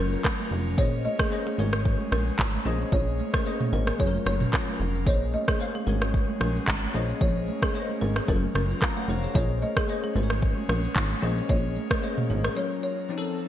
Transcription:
Already playing: analog synth bass F#1, tine electric piano F#3 C#4 F4 A#4, analog synth pad F#3 C#4 F4 A#4, marimba A#4
0.13 shaker
0.24 kick, cross-stick, clap, high conga, low conga, shaker
0.40 high conga
0.51 analog synth bass F1, low conga, shaker
0.66 shaker
0.77 analog synth bass A#1, analog synth pad G#3 A#3, tine electric piano A#3 G#4 C5 C#5 D#5, marimba C#5, kick, low conga, shaker
1.04 marimba D#5, high conga, shaker
1.19 marimba G#4, kick, cross-stick, high conga, shaker
1.30 tine electric piano A#3 G#4 C5 C#5 D#5, shaker
1.46 marimba G#4, high conga
1.57 analog synth bass G#1, analog synth pad F#3, tine electric piano G#3 F#4 A#4 C#5, marimba A#4, high conga, low conga, shaker
1.73 cross-stick, shaker
1.85 kick, shaker
2.00 high conga
2.12 analog synth bass A#1, marimba A#4, cross-stick, shaker
2.27 shaker
2.38 analog synth bass G#1, kick, clap, high conga, low conga, shaker
2.54 high conga
2.64 analog synth bass A#1, tine electric piano A#3 G#4 C5 C#5 D#5, analog synth pad A#3 C#4, low conga, shaker
2.81 shaker
2.92 analog synth bass A#1, marimba C#5, kick, low conga, shaker
3.19 high conga, shaker
3.34 marimba A#4, kick, cross-stick, high conga, shaker
3.45 tine electric piano A#3 G#4 C5 C#5 D#5, shaker
3.61 mid tom, high conga
3.73 analog synth bass G#1, marimba A#4, high conga, low conga, shaker
3.87 marimba A#4, cross-stick, shaker
3.98 analog synth bass F#1, tine electric piano F#3 C#4 F4 G#4, analog synth pad F#3 C#4 F4 A#4, marimba C#5, kick, shaker
4.07 tine electric piano A#4
4.15 high conga
4.26 analog synth bass F#1, marimba C#5, cross-stick, shaker
4.40 mid tom, shaker
4.53 kick, cross-stick, clap, high conga, low conga, shaker
4.68 high conga
4.80 analog synth bass F1, low conga, shaker
4.95 shaker
5.05 analog synth bass A#1, analog synth pad G#3 A#3 C#4, tine electric piano A#3 G#4 C5 C#5 D#5, marimba C#5, kick, low conga, shaker
5.33 marimba D#5, high conga, shaker
5.48 marimba G#4, kick, cross-stick, high conga, shaker
5.59 tine electric piano A#3 G#4 C5 C#5 F5, shaker
5.75 marimba G#4, high conga
5.86 analog synth bass G#1, analog synth pad F#3, tine electric piano G#3 F#4 A#4 C#5, marimba A#4, high conga, low conga, shaker
6.02 cross-stick, shaker
6.14 kick, shaker
6.29 high conga
6.40 analog synth bass A#1, marimba A#4, cross-stick, shaker
6.56 shaker
6.67 analog synth bass G#1, kick, clap, high conga, low conga, shaker
6.82 high conga
6.93 analog synth bass A#1, tine electric piano A#3 G#4 C5 C#5 D#5, analog synth pad A#3, low conga, shaker
7.09 shaker
7.21 analog synth bass A#1, marimba C#5, kick, low conga, shaker
7.47 high conga, shaker
7.62 marimba G#4, kick, cross-stick, high conga, shaker
7.74 tine electric piano A#3 G#4 C5 C#5 D#5, shaker
7.89 high conga
8.01 analog synth bass G#1, marimba A#4, high conga, low conga, shaker
8.16 marimba G#4, cross-stick, shaker
8.27 analog synth bass F#1, tine electric piano F#3 C#4 F4 A4, analog synth pad F#3 F4 A#4, marimba A#4, kick, shaker
8.36 tine electric piano A#4
8.43 high conga
8.55 analog synth bass F#1, marimba A#4, cross-stick, shaker
8.70 shaker
8.81 tine electric piano F5 A#5, kick, cross-stick, clap, high conga, low conga, shaker
8.97 tine electric piano C#5 F#5, high conga
9.08 analog synth bass F1, tine electric piano C5 F5, low conga, shaker
9.23 tine electric piano G#4 C#5, shaker
9.34 analog synth bass A#1, analog synth pad G#3 A#3 C#4, tine electric piano A#3 G#4 C5 C#5 D#5, marimba C#5, kick, low conga, shaker
9.62 marimba D#5, high conga, shaker
9.77 marimba G#4, kick, cross-stick, high conga, shaker
9.87 tine electric piano A#3 G#4 C5 C#5 D#5, shaker
10.04 marimba G#4, high conga
10.14 analog synth bass G#1, analog synth pad F#3, tine electric piano G#3 F#4 A#4 C5, marimba A#4, high conga, low conga, shaker
10.23 tine electric piano C#5
10.30 cross-stick, shaker
10.42 kick, shaker
10.58 high conga
10.69 analog synth bass A#1, marimba A#4, cross-stick, shaker
10.84 shaker
10.95 analog synth bass G#1, kick, clap, high conga, low conga, shaker
11.11 high conga
11.21 analog synth bass A#1, tine electric piano A#3 G#4 C5 C#5 D#5, analog synth pad A#3, low conga, shaker
11.38 shaker
11.49 analog synth bass A#1, marimba C#5, kick, low conga, shaker
11.76 high conga, shaker
11.91 marimba A#4, kick, cross-stick, high conga, shaker
12.02 tine electric piano A#3 G#4 C5 C#5 D#5, shaker
12.18 mid tom, high conga
12.30 analog synth bass G#1, marimba G#4, high conga, low conga, shaker
12.44 marimba A#4, cross-stick, shaker
12.55 tine electric piano F#3 C#4 F4 A#4, analog synth pad F#3 F4 A#4, marimba C#5
12.83 marimba C#5
13.09 tine electric piano F3 C4 D#4 F#4, analog synth pad F3 C4 D#4 A4
13.18 tine electric piano A4

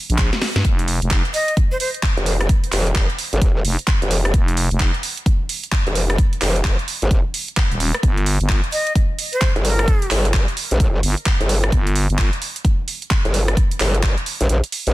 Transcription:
0.10 fm bass A#1, closed hi-hat
0.18 kick, clap, closed hi-hat
0.33 snare, closed hi-hat
0.42 snare, open hi-hat
0.56 fm bass G2, snare, closed hi-hat
0.65 fm bass F1, kick, closed hi-hat
0.79 closed hi-hat
0.88 open hi-hat
1.02 fm bass F1, closed hi-hat
1.11 kick, clap, closed hi-hat
1.25 closed hi-hat
1.34 flute D#5, open hi-hat
1.48 closed hi-hat
1.57 kick, closed hi-hat
1.71 flute C5
1.80 flute C5, open hi-hat
1.94 closed hi-hat
2.03 kick, clap, closed hi-hat
2.17 wobble bass F1, closed hi-hat
2.26 open hi-hat
2.41 cross-stick, closed hi-hat
2.49 kick, closed hi-hat
2.64 closed hi-hat
2.72 wobble bass F1, clap, open hi-hat
2.87 closed hi-hat
2.95 kick, clap, closed hi-hat
3.10 closed hi-hat
3.19 open hi-hat
3.33 wobble bass G#1, closed hi-hat
3.42 wobble bass F1, kick, closed hi-hat
3.64 fm bass F1, open hi-hat
3.79 closed hi-hat
3.88 kick, clap, closed hi-hat
4.02 wobble bass F1, closed hi-hat
4.11 open hi-hat
4.25 cross-stick, closed hi-hat
4.34 fm bass F1, kick, closed hi-hat
4.48 closed hi-hat
4.57 open hi-hat
4.71 fm bass F1, closed hi-hat
4.80 kick, clap, closed hi-hat
4.94 closed hi-hat
5.03 open hi-hat
5.17 closed hi-hat
5.26 kick, closed hi-hat
5.49 open hi-hat
5.64 closed hi-hat
5.72 kick, clap, closed hi-hat
5.87 wobble bass F1, closed hi-hat
5.95 open hi-hat
6.10 cross-stick, closed hi-hat
6.18 kick, closed hi-hat
6.33 closed hi-hat
6.41 wobble bass F1, clap, open hi-hat
6.56 closed hi-hat
6.65 kick, clap, closed hi-hat
6.79 closed hi-hat
6.88 open hi-hat
7.02 wobble bass G#1, closed hi-hat
7.11 wobble bass F1, kick, closed hi-hat
7.34 open hi-hat
7.48 closed hi-hat
7.57 kick, clap, closed hi-hat
7.71 fm bass D#1, closed hi-hat
7.80 open hi-hat
7.94 cross-stick, closed hi-hat
8.03 fm bass G1, kick, closed hi-hat
8.18 closed hi-hat
8.26 open hi-hat
8.41 fm bass G1, closed hi-hat
8.49 kick, clap, closed hi-hat
8.64 closed hi-hat
8.72 flute D#5, open hi-hat
8.87 closed hi-hat
8.95 kick, closed hi-hat
9.19 open hi-hat
9.33 flute C5, closed hi-hat
9.41 kick, clap, closed hi-hat
9.56 wobble bass G1, closed hi-hat
9.65 flute A#4, open hi-hat
9.79 cross-stick, closed hi-hat
9.88 kick, closed hi-hat
10.02 closed hi-hat
10.11 wobble bass G1, clap, open hi-hat
10.25 closed hi-hat
10.34 kick, clap, closed hi-hat
10.48 closed hi-hat
10.57 open hi-hat
10.71 wobble bass A#1, closed hi-hat
10.80 wobble bass G1, kick, closed hi-hat
11.03 fm bass G1, open hi-hat
11.17 closed hi-hat
11.26 kick, clap, closed hi-hat
11.40 wobble bass G1, closed hi-hat
11.49 open hi-hat
11.64 cross-stick, closed hi-hat
11.72 fm bass G1, kick, closed hi-hat
11.87 closed hi-hat
11.96 open hi-hat
12.10 fm bass G1, closed hi-hat
12.18 kick, clap, closed hi-hat
12.33 closed hi-hat
12.42 open hi-hat
12.56 closed hi-hat
12.65 kick, closed hi-hat
12.88 open hi-hat
13.02 closed hi-hat
13.11 kick, clap, closed hi-hat
13.25 wobble bass G1, closed hi-hat
13.34 open hi-hat
13.48 cross-stick, closed hi-hat
13.57 kick, closed hi-hat
13.71 closed hi-hat
13.80 wobble bass G1, clap, open hi-hat
13.94 closed hi-hat
14.03 kick, clap, closed hi-hat
14.18 closed hi-hat
14.26 open hi-hat
14.41 wobble bass A#1, closed hi-hat
14.49 wobble bass A#1, closed hi-hat
14.64 closed hi-hat
14.72 open hi-hat
14.87 wobble bass A#1, closed hi-hat

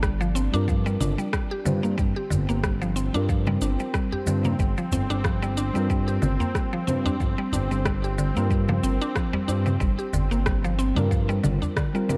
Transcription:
Already playing: analog synth bass G1, analog synth pad D4
0.03 synth pluck G3, kick, cross-stick, shaker
0.21 synth pluck F3, shaker
0.35 synth pluck C4, shaker
0.52 analog synth bass G2, synth keys G3 C4 F4, synth pluck D4, shaker
0.56 synth keys A#4
0.68 synth pluck F3, kick, shaker
0.86 synth pluck G3, shaker
1.00 analog synth bass G1, synth pluck D4, low conga, shaker
1.18 synth pluck G3, shaker
1.33 synth pluck G3, kick, cross-stick, shaker
1.51 synth pluck G4
1.65 analog synth bass G2, synth pluck D3, synth keys G3 C4 F4 C5, low conga, shaker
1.83 analog synth bass G2, synth pluck A#3, analog synth pad C4, shaker
1.98 analog synth bass G1, synth pluck G3, kick, shaker
2.16 synth pluck G4
2.30 analog synth bass G1, synth pluck D3, udu, shaker
2.49 analog synth bass G1, synth pluck A#3, shaker
2.64 synth pluck G3, kick, cross-stick, shaker
2.82 synth pluck F3, shaker
2.96 synth pluck C4, shaker
3.13 analog synth bass G2, synth keys G3 C4 F4 A#4, synth pluck D4, shaker
3.29 synth pluck F3, kick, shaker
3.47 synth pluck G3, low conga
3.61 analog synth bass G1, synth pluck D4, shaker
3.80 synth pluck G3, shaker
3.94 synth pluck G3, kick, cross-stick, shaker
4.12 synth pluck G4, udu
4.26 analog synth bass G2, synth pluck D3, synth keys G3 C4 F4 C5, shaker
4.44 synth pluck A#3, low conga, shaker
4.59 analog synth bass G1, synth pluck G3, kick, shaker
4.78 synth pluck F3, shaker
4.91 analog synth bass G1, synth pluck C4, udu, shaker
5.10 analog synth bass G1, synth pluck D4, cross-stick, shaker
5.24 synth pluck F3, kick, cross-stick, shaker
5.42 synth pluck G3, shaker
5.57 synth pluck D4, shaker
5.73 analog synth bass G2, synth keys G3 C4 F4, synth pluck G3, shaker
5.77 synth keys A#4
5.90 synth pluck G3, kick, shaker
6.08 synth pluck G4, shaker
6.22 analog synth bass G1, synth pluck D3, low conga, shaker
6.40 synth pluck A#3, udu, shaker
6.55 synth pluck G3, kick, cross-stick, shaker
6.73 synth pluck F3
6.87 analog synth bass G2, synth keys G3 C4 F4 C5, synth pluck C4, low conga, shaker
7.05 synth pluck D4, udu, shaker
7.20 analog synth bass G1, synth pluck F3, kick, shaker
7.38 synth pluck G3
7.52 analog synth bass G1, synth pluck D4, udu, shaker
7.71 analog synth bass G1, synth pluck G3, shaker
7.85 synth pluck G3, kick, cross-stick, shaker
8.04 synth pluck G4, shaker
8.18 synth pluck D3, shaker
8.34 analog synth bass G2, synth keys G3 C4 F4, synth pluck A#3, shaker
8.38 synth keys A#4
8.50 synth pluck G3, kick, shaker
8.69 synth pluck F3, low conga
8.83 analog synth bass G1, synth pluck C4, shaker
9.01 synth pluck D4, shaker
9.15 synth pluck F3, kick, cross-stick, shaker
9.33 synth pluck G3, udu
9.47 analog synth bass G2, synth keys G3 C4 F4 C5, synth pluck D4, shaker
9.66 synth pluck G3, low conga, shaker
9.80 analog synth bass G1, synth pluck G3, kick, shaker
9.99 synth pluck G4, shaker
10.13 analog synth bass G1, synth pluck D3, udu, shaker
10.31 analog synth bass G1, synth pluck A#3, cross-stick, shaker
10.46 synth pluck G3, kick, cross-stick, shaker
10.64 synth pluck F3, shaker
10.79 synth pluck C4, shaker
10.95 analog synth bass G2, synth keys G3 C4 F4 A#4, synth pluck D4, low conga, shaker
11.11 synth pluck F3, kick, shaker
11.29 synth pluck G3, shaker
11.43 analog synth bass G1, synth pluck D3, low conga, shaker
11.62 synth pluck D4, udu, shaker
11.77 synth pluck D3, kick, cross-stick, shaker
11.93 synth keys G3 C4 F4 A#4, synth pluck G3, shaker
12.08 analog synth bass G2, synth keys G3 C4 F4 A#4, synth pluck G3, low conga, shaker

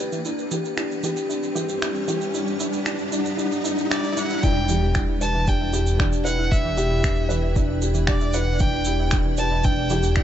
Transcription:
Already playing: felt piano D4 G4, ambient pad E4 B4 D5 G5, riser
0.00 felt piano B4
0.12 synth arpeggio sound E3, shaker
0.24 ambient pad G3, felt piano D4, synth arpeggio sound E4, shaker
0.38 shaker
0.51 synth arpeggio sound E3, felt piano G4, shaker
0.64 synth arpeggio sound G4, shaker
0.77 felt piano D4, synth arpeggio sound E4, finger snap, shaker
0.84 ambient pad G4
0.91 shaker
1.03 synth arpeggio sound E3, felt piano G4, shaker
1.16 synth arpeggio sound G4, shaker
1.29 felt piano D4, synth arpeggio sound E4, shaker
1.43 shaker
1.55 synth arpeggio sound E3, felt piano G4, shaker
1.69 synth arpeggio sound G4, ambient pad F#5, shaker
1.82 felt piano D4, synth arpeggio sound E4, finger snap, shaker
1.95 shaker
2.08 synth arpeggio sound E3, felt piano G4, shaker
2.21 synth arpeggio sound G4, shaker
2.34 felt piano D4, synth arpeggio sound E4, shaker
2.47 shaker
2.60 felt piano D4, synth arpeggio sound E4, shaker
2.73 shaker
2.86 felt piano D4, synth arpeggio sound E4, finger snap, shaker
2.99 shaker
3.11 felt piano D4, synth arpeggio sound E4, shaker
3.25 shaker
3.37 felt piano D4, synth arpeggio sound E4, shaker
3.52 shaker
3.64 felt piano D4, synth arpeggio sound E4, shaker
3.78 shaker
3.90 felt piano D4, synth arpeggio sound E4, violin D5, finger snap, shaker
4.04 shaker
4.17 felt piano D4, synth arpeggio sound E4, violin F#5, shaker
4.30 shaker
4.43 detuned saw bass E1, felt piano D4, ambient pad E4, synth arpeggio sound E4, violin G5, kick, shaker
4.69 synth arpeggio sound E3, felt piano G4, shaker
4.83 synth arpeggio sound G4
4.94 felt piano D4, synth arpeggio sound E4, finger snap, kick, shaker
5.08 synth arpeggio sound E4, ambient pad D5 G5
5.21 felt piano B4, violin A5, shaker
5.35 synth arpeggio sound E3
5.47 felt piano D4, synth arpeggio sound G4, violin G5, kick, shaker
5.61 synth arpeggio sound E4
5.73 synth arpeggio sound E4, felt piano G4, shaker
5.87 shaker
5.99 synth arpeggio sound E3, felt piano D4, finger snap, kick
6.13 synth arpeggio sound G4, shaker
6.24 synth arpeggio sound E4, felt piano B4, violin F#5, shaker
6.39 synth arpeggio sound E4
6.51 felt piano D4, violin E5, kick, shaker
6.65 synth arpeggio sound E3
6.77 felt piano G4, synth arpeggio sound G4, shaker
6.91 synth arpeggio sound E4
7.03 felt piano D4, synth arpeggio sound E4, finger snap, kick, shaker
7.29 synth arpeggio sound E3, felt piano B4, shaker
7.42 synth arpeggio sound G4
7.55 felt piano D4, synth arpeggio sound E4, kick, shaker
7.69 synth arpeggio sound E4
7.82 felt piano G4, shaker
7.94 synth arpeggio sound E3, shaker
8.07 felt piano D4, synth arpeggio sound G4, violin D5, finger snap, kick
8.21 synth arpeggio sound E4, shaker
8.33 synth arpeggio sound E4, felt piano B4, violin F#5, shaker
8.59 synth arpeggio sound E3, felt piano D4, violin G5, kick, shaker
8.73 synth arpeggio sound G4
8.85 synth arpeggio sound E4, felt piano G4, shaker
9.00 synth arpeggio sound E4
9.11 felt piano D4, finger snap, kick, shaker
9.26 synth arpeggio sound E3
9.37 synth arpeggio sound G4, felt piano B4, violin A5, shaker
9.52 synth arpeggio sound E4
9.64 felt piano D4, synth arpeggio sound E4, violin G5, kick, shaker
9.90 synth arpeggio sound E3, felt piano G4, shaker
10.03 synth arpeggio sound G4, shaker
10.16 felt piano D4, synth arpeggio sound E4, finger snap, kick

